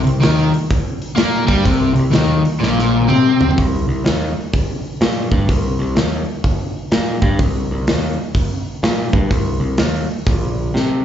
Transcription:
0.04 0.22 C2 medium
0.04 0.18 C3 medium
0.04 open hi-hat medium
0.20 0.51 D#2 medium
0.20 0.51 D#3 loud
0.20 snare loud
0.20 open hi-hat medium
0.54 open hi-hat soft
0.71 kick loud
0.71 open hi-hat medium
1.02 open hi-hat medium
1.16 1.46 A#2 loud
1.16 1.46 A#3 loud
1.16 snare loud
1.16 open hi-hat medium
1.47 1.65 G2 medium
1.47 1.64 G3 loud
1.47 kick loud
1.47 open hi-hat medium
1.64 1.94 C2 medium
1.64 1.93 C3 medium
1.64 kick loud
1.64 open hi-hat medium
1.94 2.13 C2 medium
1.94 2.09 C3 medium
1.94 open hi-hat medium
2.12 2.43 D#2 medium
2.12 2.42 D#3 medium
2.12 snare loud
2.12 open hi-hat medium
2.45 open hi-hat soft
2.60 3.07 A#1 medium
2.60 3.08 A#2 medium
2.60 snare medium
2.79 snare medium
3.02 high tom medium
3.08 3.55 C3 medium
3.08 3.56 C4 medium
3.08 mid tom medium
3.41 floor tom medium
3.51 floor tom medium
3.58 3.86 C2 medium
3.58 kick loud
3.58 open hi-hat medium
3.88 4.04 C2 medium
4.05 4.33 D#2 medium
4.05 snare loud
4.05 open hi-hat medium
4.53 kick medium
4.53 open hi-hat medium
5.01 5.29 A#2 medium
5.01 snare loud
5.01 open hi-hat medium
5.32 5.47 G2 medium
5.32 kick loud
5.49 5.77 C2 medium
5.49 kick medium
5.49 open hi-hat medium
5.79 5.95 C2 medium
5.95 6.24 D#2 medium
5.95 snare loud
5.95 open hi-hat medium
6.44 kick loud
6.44 open hi-hat medium
6.91 7.20 A#2 medium
6.91 snare loud
6.91 open hi-hat medium
7.22 7.38 G2 loud
7.22 kick loud
7.39 7.68 C2 medium
7.39 kick loud
7.39 open hi-hat medium
7.71 7.87 C2 medium
7.87 8.16 D#2 medium
7.87 snare loud
7.87 open hi-hat medium
8.35 kick loud
8.35 open hi-hat medium
8.83 9.11 A#2 medium
8.83 snare loud
8.83 open hi-hat medium
9.13 9.29 G2 medium
9.13 kick loud
9.31 9.60 C2 medium
9.31 kick loud
9.31 open hi-hat medium
9.60 9.77 C2 medium
9.78 10.07 D#2 loud
9.78 snare loud
9.78 open hi-hat medium
10.27 10.71 A#1 medium
10.27 kick loud
10.27 open hi-hat medium
10.74 11.05 C3 medium
10.74 snare medium

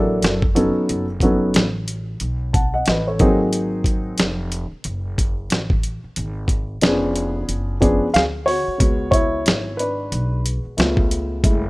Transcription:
0.00 0.20 A1 medium
0.00 0.39 F#3 medium
0.00 0.39 A#3 medium
0.00 0.39 D4 medium
0.00 0.39 E4 medium
0.00 0.42 A4 medium
0.22 0.73 F#1 medium
0.22 snare loud
0.22 closed hi-hat medium
0.42 kick medium
0.55 1.04 F#3 medium
0.55 1.05 B3 medium
0.55 1.05 C#4 medium
0.55 1.05 D#4 medium
0.55 1.05 A4 medium
0.55 closed hi-hat medium
0.76 muted upright bass stroke soft
0.89 1.52 F#1 loud
0.89 closed hi-hat medium
1.20 1.63 F#3 medium
1.20 1.63 B3 medium
1.20 1.63 C#4 medium
1.20 1.64 D#4 medium
1.20 1.64 A4 medium
1.20 kick medium
1.20 closed hi-hat medium
1.54 2.18 A1 medium
1.54 snare loud
1.54 closed hi-hat medium
1.88 closed hi-hat medium
2.20 2.84 B1 medium
2.20 closed hi-hat medium
2.53 2.72 F#5 medium
2.53 2.72 A5 medium
2.53 kick loud
2.53 closed hi-hat medium
2.74 2.86 D#5 medium
2.74 2.86 F#5 medium
2.86 3.18 A1 medium
2.86 3.07 B4 medium
2.86 3.06 D#5 medium
2.86 snare loud
2.86 closed hi-hat medium
3.07 3.39 A4 medium
3.07 3.39 C#5 medium
3.19 4.15 G#1 medium
3.19 4.27 F#3 medium
3.19 4.27 A#3 medium
3.19 4.27 C4 medium
3.19 4.27 D#4 medium
3.19 4.27 G#4 medium
3.19 kick loud
3.19 closed hi-hat medium
3.53 closed hi-hat medium
3.84 kick medium
3.84 closed hi-hat medium
4.18 4.69 F1 medium
4.18 snare loud
4.18 closed hi-hat medium
4.52 closed hi-hat medium
4.71 muted upright bass stroke soft
4.84 5.48 F#1 loud
4.84 closed hi-hat medium
5.18 kick medium
5.18 closed hi-hat medium
5.50 6.01 A1 medium
5.50 snare loud
5.50 closed hi-hat medium
5.70 kick medium
5.83 closed hi-hat medium
6.04 muted upright bass stroke soft
6.16 6.80 G#1 medium
6.16 closed hi-hat medium
6.48 kick medium
6.48 closed hi-hat medium
6.81 7.45 F1 medium
6.81 7.76 F3 medium
6.81 7.76 B3 medium
6.81 7.76 C#4 medium
6.81 7.76 D4 medium
6.81 7.76 G#4 medium
6.81 snare loud
6.81 closed hi-hat medium
7.16 closed hi-hat medium
7.49 7.99 F#1 medium
7.49 closed hi-hat medium
7.80 8.06 F3 medium
7.80 8.06 B3 medium
7.80 8.06 C#4 medium
7.80 8.07 D4 medium
7.80 8.07 G#4 medium
7.80 kick medium
7.80 closed hi-hat medium
8.02 muted upright bass stroke soft
8.14 8.65 D2 medium
8.14 8.23 G#4 medium
8.14 8.21 F5 loud
8.14 snare loud
8.14 closed hi-hat medium
8.46 8.78 F#4 medium
8.46 9.10 C#5 loud
8.46 open hi-hat medium
8.68 muted upright bass stroke soft
8.78 9.43 C#2 loud
8.78 10.73 G#3 soft
8.78 10.74 B3 soft
8.78 10.74 F#4 medium
8.78 kick loud
8.78 closed hi-hat medium
9.11 9.75 E4 medium
9.11 9.80 C#5 medium
9.11 kick medium
9.11 closed hi-hat medium
9.46 10.09 G#1 medium
9.46 snare loud
9.46 closed hi-hat medium
9.77 10.42 D4 medium
9.77 10.40 B4 medium
9.77 closed hi-hat medium
10.12 10.62 B1 loud
10.12 closed hi-hat medium
10.46 closed hi-hat medium
10.65 muted upright bass stroke soft
10.77 11.41 C#2 loud
10.77 11.40 A3 medium
10.77 11.41 B3 medium
10.77 11.41 F4 medium
10.77 snare loud
10.77 closed hi-hat medium
10.97 kick medium
11.11 closed hi-hat medium
11.43 11.70 F#1 loud
11.43 11.70 G#3 medium
11.43 11.70 A3 soft
11.43 11.70 E4 medium
11.43 kick loud
11.43 closed hi-hat medium

